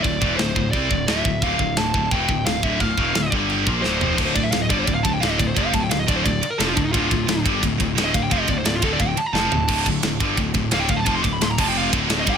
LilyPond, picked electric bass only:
\new Staff \with { instrumentName = "Picked electric bass" } { \clef bass \time 4/4 \key d \minor \tempo 4 = 174 d,,8 e,,8 d,,8 d,,8 c,8 d,,8 d,,8 d,,8 | d,,8 d,,8 d,,8 d,,8 e,,8 d,,8 d,,8 d,,8 | d,,8 e,,8 d,,8 g,,4 bes,,8 d,,8 f,,8 | d,,8 d,,8 d,,8 g,,8 d,,8 d,,8 d,,8 d,,8 |
f,,8 d,,8 d,,8 d,,8 d,,8 r8 f,,8 d,,8 | d,,8 d,,8 d,,8 g,,8 d,,8 d,,8 d,,8 d,,8 | f,,8 d,,8 d,,8 d,,8 d,,8 r8 f,,8 d,,8 | d,,8 d,,8 d,,8 g,,8 d,,8 d,,8 d,,8 d,,8 |
f,,8 d,,8 d,,8 f,,4 d,,4 g,,8 | }